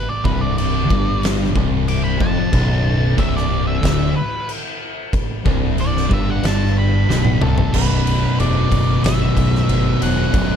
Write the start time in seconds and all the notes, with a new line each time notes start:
0.09 D5
0.24 C1 C2 B4, kick
0.41 D5
0.58 D5, crash
0.90 G1 G2, kick
1.23 snare, crash
1.54 C1 C2, kick
1.88 D6, crash
2.04 B5
2.19 F1 F2 A5, kick
2.53 B0 B1, kick, crash
3.18 C1 C2 E5, kick, crash
3.36 D5, snare
3.67 E5
3.83 D1 D2, kick, snare, crash
4.16 B4
4.49 crash
5.13 kick, crash
5.45 C1 C2, kick
5.78 D5, crash
5.97 snare
6.10 G1 G2 E5, kick
6.30 F#5
6.43 G1 G2 A5, snare, crash
6.79 B5
7.09 B0 B1, snare
7.25 high tom
7.41 C1 C2 A4, mid tom
7.58 floor tom
7.73 B0 B1 F#2 B2 B4, kick, crash
8.07 ride
8.38 E1 B1 F#2 B2 D5, ride
8.70 F#1 B1 F#2 B2, kick, ride
9.03 G1 B1 F#2 B2 E5, snare, ride
9.37 B1, kick, ride
9.55 snare
9.68 G1 B1 F#2 B2, ride
10.01 E1 B1 F#2 B2 F#5, ride
10.33 B0 B1 F#2 B2, kick, ride